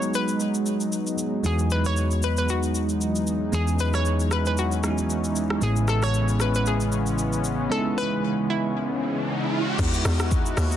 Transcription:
0.00 5.58 F#3 medium
0.00 1.14 G#3 medium
0.00 5.58 G#3 medium
0.00 1.14 B3 medium
0.00 3.49 B3 medium
0.00 1.15 D#4 medium
0.00 5.58 D#4 medium
0.00 1.40 F#4 medium
0.00 1.15 G#4 medium
0.00 0.13 C#5 loud
0.00 shaker medium
0.14 0.89 B4 medium
0.14 shaker medium
0.28 shaker medium
0.40 shaker medium
0.54 shaker medium
0.66 shaker medium
0.81 shaker soft
0.93 shaker medium
1.07 shaker medium
1.18 shaker medium
1.44 3.49 E2 medium
1.44 9.75 E3 medium
1.44 3.49 G#3 medium
1.44 3.49 B3 medium
1.44 3.49 D#4 medium
1.44 3.50 F#4 medium
1.44 1.72 G#4 loud
1.44 shaker medium
1.59 shaker medium
1.71 1.86 B4 medium
1.71 shaker loud
1.85 2.24 C#5 loud
1.85 shaker medium
1.97 shaker medium
2.11 shaker medium
2.23 2.37 B4 loud
2.23 shaker loud
2.37 2.50 B4 medium
2.37 shaker medium
2.49 3.24 F#4 medium
2.49 shaker medium
2.63 shaker medium
2.75 shaker medium
2.89 shaker medium
3.01 shaker medium
3.16 shaker medium
3.27 shaker medium
3.52 5.58 E2 medium
3.52 4.80 G#3 medium
3.52 4.81 B3 medium
3.52 5.60 C#4 medium
3.52 4.81 D#4 medium
3.52 4.81 G#4 medium
3.52 3.81 G#4 loud
3.52 shaker medium
3.68 shaker medium
3.79 3.93 B4 loud
3.79 shaker loud
3.94 4.33 C#5 loud
3.94 cross-stick medium
3.94 shaker medium
4.05 shaker medium
4.20 shaker medium
4.31 4.46 B4 loud
4.31 cross-stick medium
4.31 shaker loud
4.46 4.58 B4 medium
4.46 shaker medium
4.57 5.32 F#4 medium
4.57 shaker medium
4.72 shaker medium
4.83 5.60 G#3 soft
4.83 5.60 B3 soft
4.83 5.62 D#4 soft
4.83 4.91 E4 soft
4.83 cross-stick medium
4.83 shaker medium
4.90 5.65 F#4 medium
4.98 shaker medium
5.10 shaker medium
5.24 shaker medium
5.36 shaker medium
5.50 cross-stick medium
5.61 7.67 A1 medium
5.61 9.75 C#3 medium
5.61 7.66 G#3 medium
5.61 9.75 G#3 medium
5.61 7.66 B3 medium
5.61 9.75 B3 medium
5.61 5.69 C4 soft
5.61 9.75 C#4 medium
5.61 7.67 E4 medium
5.61 5.89 G#4 loud
5.61 shaker medium
5.69 7.69 C#4 medium
5.76 shaker medium
5.88 6.03 A4 medium
5.88 cross-stick medium
5.88 shaker loud
6.02 6.42 C#5 loud
6.02 cross-stick medium
6.02 shaker medium
6.14 shaker medium
6.28 shaker medium
6.40 6.54 B4 medium
6.40 cross-stick medium
6.40 shaker loud
6.54 6.66 B4 medium
6.54 shaker medium
6.66 7.41 G#4 medium
6.66 shaker medium
6.80 shaker medium
6.92 shaker medium
7.07 shaker medium
7.19 shaker medium
7.33 shaker medium
7.44 shaker medium
7.69 9.75 G#3 medium
7.69 9.75 B3 medium
7.69 9.75 C#4 medium
7.69 7.78 D#4 medium
7.69 7.98 A4 loud
7.69 riser medium
7.78 9.79 E4 medium
7.98 8.51 B4 loud
8.50 9.24 E4 medium
9.79 10.03 E2 loud
9.79 10.77 G#3 medium
9.79 10.77 B3 medium
9.79 10.77 D#4 medium
9.79 10.77 E4 medium
9.79 10.77 F#4 medium
9.79 kick loud
9.79 crash loud
9.79 shaker medium
9.93 shaker medium
10.05 10.54 E2 loud
10.05 cross-stick loud
10.05 open hi-hat medium
10.05 shaker loud
10.19 cross-stick loud
10.19 shaker medium
10.31 kick medium
10.31 shaker medium
10.46 shaker medium
10.57 10.77 D#2 medium
10.57 cross-stick loud
10.57 open hi-hat medium
10.57 shaker loud
10.72 shaker medium

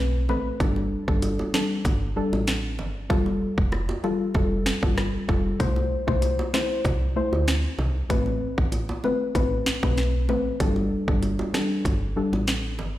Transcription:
0.00 0.30 B1 medium
0.00 0.25 A3 medium
0.00 0.26 C4 medium
0.00 0.26 B4 medium
0.29 0.52 A1 medium
0.29 0.58 A3 medium
0.29 0.58 C4 medium
0.29 0.58 B4 medium
0.29 low bongo medium
0.60 0.96 G1 loud
0.60 1.04 G3 loud
0.60 1.04 D4 medium
0.60 1.04 A4 loud
0.60 kick loud
0.60 closed hi-hat medium
0.60 high bongo medium
0.76 high bongo medium
1.08 1.43 G1 loud
1.08 1.50 G3 medium
1.08 1.51 D4 medium
1.08 1.51 A4 medium
1.08 kick loud
1.22 closed hi-hat medium
1.22 high bongo medium
1.39 high bongo medium
1.53 1.83 G3 medium
1.53 1.83 D4 medium
1.53 1.83 A4 medium
1.53 snare loud
1.53 high bongo soft
1.53 low bongo medium
1.85 2.21 G1 loud
1.85 kick medium
1.85 closed hi-hat medium
1.85 high bongo medium
2.16 2.38 G3 medium
2.16 2.39 D4 medium
2.16 2.39 A4 medium
2.33 2.80 A1 medium
2.33 high bongo medium
2.47 snare loud
2.47 closed hi-hat medium
2.79 3.12 G1 medium
2.79 low bongo medium
3.10 3.46 F1 loud
3.10 3.68 G3 loud
3.10 3.68 F4 medium
3.10 3.68 A4 loud
3.10 kick loud
3.10 high bongo medium
3.26 high bongo medium
3.58 3.92 F1 loud
3.58 kick loud
3.72 cross-stick medium
3.72 high bongo medium
3.89 high bongo medium
4.04 4.26 G3 medium
4.04 4.26 F4 medium
4.04 4.26 A4 medium
4.04 high bongo soft
4.04 low bongo medium
4.34 4.71 F1 loud
4.34 4.79 G3 medium
4.34 4.79 F4 medium
4.34 4.79 A4 loud
4.34 kick medium
4.34 high bongo medium
4.66 snare loud
4.83 5.17 G1 loud
4.83 5.25 G3 medium
4.83 5.25 F4 medium
4.83 5.25 A4 medium
4.83 kick loud
4.83 high bongo medium
4.98 cross-stick loud
4.98 snare medium
5.28 5.52 F1 medium
5.28 5.58 G3 medium
5.28 5.58 F4 medium
5.28 5.58 A4 medium
5.28 kick medium
5.28 low bongo medium
5.59 5.96 C2 loud
5.59 6.04 A3 loud
5.59 6.04 E4 medium
5.59 6.04 C5 loud
5.59 kick loud
5.59 closed hi-hat medium
5.59 high bongo medium
5.76 high bongo medium
6.07 6.42 C2 medium
6.07 6.50 A3 medium
6.07 6.50 E4 medium
6.07 6.50 C5 medium
6.07 kick medium
6.22 closed hi-hat medium
6.22 high bongo medium
6.39 high bongo medium
6.53 6.83 A3 medium
6.53 6.83 E4 medium
6.53 6.83 C5 medium
6.53 snare loud
6.53 high bongo soft
6.53 low bongo medium
6.85 7.21 C2 loud
6.85 kick loud
6.85 closed hi-hat medium
6.85 high bongo medium
7.16 7.38 A3 medium
7.16 7.39 E4 medium
7.16 7.39 C5 medium
7.33 7.67 D2 medium
7.33 high bongo medium
7.48 snare loud
7.48 closed hi-hat medium
7.79 8.02 C2 medium
7.79 low bongo medium
8.10 8.46 A1 loud
8.10 8.68 A3 loud
8.10 8.68 C4 medium
8.10 8.68 B4 loud
8.10 kick loud
8.10 closed hi-hat medium
8.10 high bongo medium
8.26 high bongo medium
8.58 8.93 A1 loud
8.58 kick loud
8.72 closed hi-hat medium
8.72 high bongo medium
8.89 high bongo medium
9.04 9.26 A3 medium
9.04 9.26 C4 medium
9.04 9.26 B4 medium
9.04 high bongo soft
9.04 low bongo medium
9.35 9.71 A1 loud
9.35 9.79 A3 loud
9.35 9.79 C4 medium
9.35 9.79 B4 loud
9.35 kick medium
9.35 closed hi-hat medium
9.35 high bongo medium
9.66 snare loud
9.83 10.31 B1 loud
9.83 10.25 A3 medium
9.83 10.25 C4 medium
9.83 10.26 B4 medium
9.83 kick medium
9.83 high bongo medium
9.97 snare medium
9.97 closed hi-hat medium
10.29 10.53 A1 loud
10.29 10.58 A3 medium
10.29 10.58 C4 medium
10.29 10.58 B4 medium
10.29 low bongo medium
10.60 10.96 G1 loud
10.60 11.04 G3 loud
10.60 11.04 D4 medium
10.60 11.04 A4 loud
10.60 kick loud
10.60 closed hi-hat medium
10.60 high bongo medium
10.76 high bongo medium
11.08 11.43 G1 loud
11.08 11.50 G3 medium
11.08 11.50 D4 medium
11.08 11.51 A4 medium
11.08 kick loud
11.22 closed hi-hat medium
11.22 high bongo medium
11.39 high bongo medium
11.54 11.83 G3 medium
11.54 11.83 D4 medium
11.54 11.83 A4 medium
11.54 snare loud
11.54 high bongo soft
11.54 low bongo medium
11.85 12.21 G1 loud
11.85 kick medium
11.85 closed hi-hat medium
11.85 high bongo medium
12.16 12.38 G3 medium
12.16 12.39 D4 medium
12.16 12.39 A4 medium
12.33 12.80 A1 medium
12.33 high bongo medium
12.47 snare loud
12.47 closed hi-hat medium
12.79 12.98 G1 medium
12.79 low bongo medium

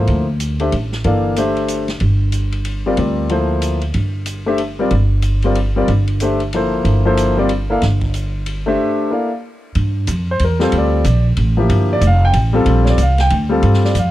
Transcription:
0.00 0.23 F3 soft
0.00 0.24 A#3 soft
0.00 0.24 E4 soft
0.00 0.24 A4 soft
0.00 0.24 C5 medium
0.07 0.69 D2 medium
0.07 ride soft
0.40 hi-hat pedal soft
0.40 ride medium
0.60 0.71 A3 soft
0.60 0.71 D4 soft
0.60 0.72 G4 soft
0.60 0.72 C5 soft
0.60 0.72 E5 medium
0.60 ride soft
0.72 1.03 A1 medium
0.72 ride soft
0.92 snare soft
1.04 1.97 G1 medium
1.04 1.36 E3 soft
1.04 1.36 A#3 medium
1.04 1.36 A4 medium
1.04 1.36 D5 medium
1.04 1.37 F5 medium
1.04 ride soft
1.36 1.85 A3 medium
1.36 1.85 D4 medium
1.36 1.85 G4 medium
1.36 1.86 C5 medium
1.36 1.86 E5 medium
1.36 hi-hat pedal soft
1.36 ride medium
1.56 ride soft
1.68 hi-hat pedal medium
1.68 ride medium
1.88 snare soft
1.88 ride soft
2.00 2.94 G1 medium
2.00 ride soft
2.32 hi-hat pedal soft
2.32 ride medium
2.52 ride soft
2.65 ride medium
2.86 2.96 G3 medium
2.86 2.97 C4 medium
2.86 2.97 F4 medium
2.86 2.97 A#4 medium
2.86 2.98 D5 medium
2.97 3.90 D2 medium
2.97 3.29 G3 soft
2.97 3.29 C4 soft
2.97 3.29 F4 soft
2.97 3.29 A#4 soft
2.97 3.30 D5 soft
2.97 ride soft
3.29 3.78 F3 medium
3.29 3.79 A#3 soft
3.29 3.79 E4 medium
3.29 3.79 A4 soft
3.29 3.79 C5 medium
3.29 ride soft
3.62 hi-hat pedal medium
3.62 ride medium
3.81 ride soft
3.94 4.87 G1 medium
3.94 ride soft
4.26 hi-hat pedal medium
4.26 ride medium
4.46 4.58 A3 medium
4.46 4.58 D4 medium
4.46 4.58 G4 medium
4.46 4.58 C5 medium
4.46 4.59 E5 medium
4.58 ride soft
4.79 4.90 G3 medium
4.79 4.90 C4 medium
4.79 4.91 F4 medium
4.79 4.91 A#4 medium
4.79 4.91 D5 medium
4.91 5.84 G1 medium
4.91 ride soft
5.22 hi-hat pedal soft
5.22 ride medium
5.42 5.55 G3 medium
5.42 5.55 C4 medium
5.42 5.55 F4 medium
5.42 5.56 A#4 medium
5.42 5.56 D5 medium
5.42 ride soft
5.55 ride medium
5.76 5.87 G3 medium
5.76 5.87 C4 medium
5.76 5.88 F4 medium
5.76 5.88 A#4 medium
5.76 5.88 D5 medium
5.88 6.81 G1 medium
5.88 ride soft
6.07 ride soft
6.20 6.39 A3 medium
6.20 6.39 D4 medium
6.20 6.39 G4 soft
6.20 6.39 C5 soft
6.20 6.40 E5 medium
6.20 hi-hat pedal medium
6.20 ride medium
6.40 ride soft
6.53 7.02 F3 medium
6.53 7.02 A#3 medium
6.53 7.02 E4 medium
6.53 7.02 A4 soft
6.53 7.02 C5 medium
6.53 ride soft
6.85 7.78 G1 medium
6.85 ride soft
7.05 7.35 F3 medium
7.05 7.36 A#3 medium
7.05 7.36 E4 medium
7.05 7.36 A4 medium
7.05 7.36 C5 medium
7.17 hi-hat pedal soft
7.17 ride medium
7.37 7.48 G3 medium
7.37 7.49 C4 medium
7.37 7.49 F4 medium
7.37 7.49 A#4 medium
7.37 7.49 D5 medium
7.49 ride medium
7.70 7.81 A#3 medium
7.70 7.81 E4 medium
7.70 7.81 A4 medium
7.70 7.81 D5 soft
7.70 7.82 F5 medium
7.82 8.75 G1 medium
7.82 snare soft
7.82 ride soft
8.01 kick soft
8.01 ride soft
8.14 hi-hat pedal medium
8.14 ride soft
8.46 ride medium
8.66 9.08 A3 medium
8.66 9.09 D4 medium
8.66 9.09 G4 medium
8.66 9.09 C5 medium
8.66 9.09 E5 medium
9.11 9.29 A#3 soft
9.11 9.29 E4 soft
9.11 9.29 A4 soft
9.11 9.29 D5 soft
9.11 9.30 F5 medium
9.75 10.07 G2 medium
9.75 ride soft
10.07 10.39 F2 medium
10.07 hi-hat pedal medium
10.07 ride medium
10.31 10.42 C5 medium
10.39 10.71 E2 medium
10.39 ride medium
10.44 10.62 A#4 medium
10.59 11.02 G3 medium
10.59 11.02 C4 medium
10.59 11.03 F4 medium
10.59 11.03 A4 medium
10.59 10.74 C5 medium
10.59 snare soft
10.72 11.04 D2 medium
10.72 ride medium
10.78 11.24 D5 medium
11.04 11.36 A#1 medium
11.04 hi-hat pedal soft
11.04 ride medium
11.37 11.69 A1 medium
11.37 ride medium
11.57 11.99 F3 medium
11.57 12.00 A#3 soft
11.57 12.00 E4 medium
11.57 12.00 G4 medium
11.69 12.01 G1 medium
11.69 ride medium
11.93 12.03 D5 medium
12.01 12.33 F1 medium
12.01 hi-hat pedal medium
12.01 ride medium
12.07 12.24 F5 medium
12.25 12.35 G5 medium
12.33 12.65 A1 medium
12.33 ride medium
12.53 12.96 G3 medium
12.53 12.96 C4 medium
12.53 12.96 F4 medium
12.53 12.97 A4 medium
12.66 12.97 A#1 medium
12.66 ride medium
12.86 13.00 D5 medium
12.86 snare soft
12.98 13.29 C2 medium
12.98 hi-hat pedal medium
12.98 ride medium
13.02 13.20 F5 medium
13.18 13.31 G5 medium
13.18 snare soft
13.18 ride soft
13.30 13.62 D2 medium
13.30 ride medium
13.49 13.92 G3 medium
13.49 13.93 C4 medium
13.49 13.93 F4 medium
13.49 13.93 A4 medium
13.62 13.94 G2 medium
13.62 ride soft
13.74 snare soft
13.85 13.96 D5 medium
13.85 snare soft
13.95 14.11 F2 medium
13.95 hi-hat pedal soft
13.95 ride medium
13.99 14.11 F5 medium

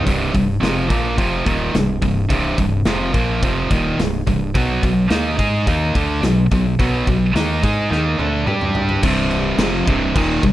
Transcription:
0.05 0.33 C1 medium
0.05 0.32 C2 medium
0.05 0.33 G2 medium
0.05 0.34 C3 medium
0.05 kick loud
0.05 open hi-hat medium
0.34 0.60 C1 medium
0.34 0.56 C2 medium
0.34 0.56 G2 medium
0.34 kick medium
0.34 open hi-hat medium
0.61 0.88 F1 medium
0.61 0.89 F2 medium
0.61 0.89 C3 medium
0.61 0.88 F3 loud
0.61 snare loud
0.61 open hi-hat medium
0.89 1.16 A#1 medium
0.89 1.17 A#2 medium
0.89 1.17 F3 loud
0.89 1.17 A#3 medium
0.89 kick loud
0.89 open hi-hat medium
1.17 1.44 F1 medium
1.17 1.45 F2 medium
1.17 1.45 C3 medium
1.17 1.45 F3 medium
1.17 kick loud
1.17 open hi-hat medium
1.46 1.72 D#1 medium
1.46 1.73 D#2 medium
1.46 1.73 A#2 medium
1.46 1.74 D#3 medium
1.46 kick loud
1.46 open hi-hat medium
1.74 2.00 C1 medium
1.74 1.96 C2 medium
1.74 1.97 G2 medium
1.74 snare loud
1.74 open hi-hat medium
2.02 2.29 C1 medium
2.02 2.25 C2 medium
2.02 2.25 G2 medium
2.02 kick medium
2.02 open hi-hat medium
2.30 2.56 C1 medium
2.30 2.57 C2 medium
2.30 2.58 G2 medium
2.30 2.58 C3 loud
2.30 kick loud
2.30 open hi-hat medium
2.58 2.84 C1 medium
2.58 2.81 C2 medium
2.58 2.81 G2 medium
2.58 kick loud
2.58 open hi-hat medium
2.85 3.12 F1 medium
2.85 3.14 F2 medium
2.85 3.14 C3 loud
2.85 3.14 F3 loud
2.85 snare loud
2.85 open hi-hat medium
3.14 3.40 A#1 medium
3.14 3.42 A#2 medium
3.14 3.42 F3 medium
3.14 3.42 A#3 loud
3.14 kick loud
3.14 open hi-hat medium
3.43 3.69 F1 medium
3.43 3.71 F2 medium
3.43 3.71 C3 medium
3.43 3.71 F3 medium
3.43 kick loud
3.43 open hi-hat medium
3.71 3.97 D#1 medium
3.71 3.98 D#2 medium
3.71 3.98 A#2 medium
3.71 3.99 D#3 loud
3.71 kick loud
3.71 open hi-hat medium
3.97 4.24 C1 medium
3.97 4.22 C2 medium
3.97 4.22 G2 medium
3.97 snare loud
3.97 open hi-hat medium
4.27 4.53 C1 medium
4.27 4.49 C2 medium
4.27 4.50 G2 medium
4.27 kick medium
4.27 open hi-hat medium
4.55 4.81 B1 loud
4.55 4.82 B2 medium
4.55 4.83 F#3 medium
4.55 4.83 B3 loud
4.55 kick loud
4.55 open hi-hat medium
4.83 5.09 B1 medium
4.83 5.06 B2 medium
4.83 5.06 F#3 medium
4.83 kick medium
4.83 open hi-hat medium
5.10 5.37 D#2 medium
5.10 5.38 D#3 medium
5.10 5.38 A#3 medium
5.10 5.39 D#4 loud
5.10 snare loud
5.10 open hi-hat medium
5.39 5.65 G#2 medium
5.39 5.67 G#3 medium
5.39 5.67 D#4 medium
5.39 5.67 G#4 loud
5.39 kick loud
5.39 open hi-hat medium
5.67 5.93 D#2 medium
5.67 5.94 D#3 medium
5.67 5.95 A#3 loud
5.67 5.95 D#4 loud
5.67 kick loud
5.67 open hi-hat medium
5.94 6.21 D2 medium
5.94 6.22 D3 medium
5.94 6.22 A3 medium
5.94 6.22 D4 loud
5.94 kick loud
5.94 open hi-hat medium
6.22 6.49 B1 medium
6.22 6.46 B2 medium
6.22 6.46 F#3 medium
6.22 snare loud
6.22 open hi-hat medium
6.51 6.77 B1 medium
6.51 6.74 B2 medium
6.51 6.74 F#3 medium
6.51 kick medium
6.51 open hi-hat medium
6.79 7.05 B1 medium
6.79 7.06 B2 medium
6.79 7.06 F#3 loud
6.79 7.06 B3 loud
6.79 kick loud
6.79 open hi-hat medium
7.07 7.33 B1 medium
7.07 7.30 B2 medium
7.07 7.29 F#3 medium
7.07 kick medium
7.07 open hi-hat soft
7.34 7.60 D#2 medium
7.34 7.62 D#3 medium
7.34 7.63 A#3 loud
7.34 7.62 D#4 loud
7.34 snare loud
7.34 open hi-hat medium
7.63 7.89 G#2 medium
7.63 7.90 G#3 medium
7.63 7.90 D#4 loud
7.63 7.91 G#4 loud
7.63 kick loud
7.63 open hi-hat medium
7.90 8.17 D#2 medium
7.90 8.18 D#3 medium
7.90 8.18 A#3 medium
7.90 8.18 D#4 medium
7.90 snare medium
8.19 8.45 D2 medium
8.19 8.46 D3 medium
8.19 8.47 A3 medium
8.19 8.46 D4 loud
8.19 high tom medium
8.47 8.99 G2 medium
8.47 9.02 G3 medium
8.47 9.02 D4 medium
8.47 9.02 G4 medium
8.47 mid tom medium
8.61 mid tom medium
8.75 floor tom loud
8.89 floor tom medium
9.02 9.55 C1 medium
9.02 9.58 C2 loud
9.02 9.58 G2 loud
9.02 9.58 C3 loud
9.02 kick loud
9.02 crash loud
9.02 crash medium
9.31 crash medium
9.58 9.84 F1 medium
9.58 9.85 F2 loud
9.58 9.85 C3 loud
9.58 9.86 F3 loud
9.58 snare loud
9.58 crash medium
9.86 10.13 C1 medium
9.86 10.13 C2 loud
9.86 10.14 G2 medium
9.86 10.14 C3 loud
9.86 kick loud
9.86 crash medium
10.15 10.41 D#1 loud
10.15 10.42 D#2 medium
10.15 10.42 A#2 medium
10.15 10.42 D#3 loud
10.15 kick loud
10.15 crash loud
10.43 10.53 C1 medium
10.43 10.53 C2 medium
10.43 10.53 G2 medium
10.43 kick medium
10.43 crash medium

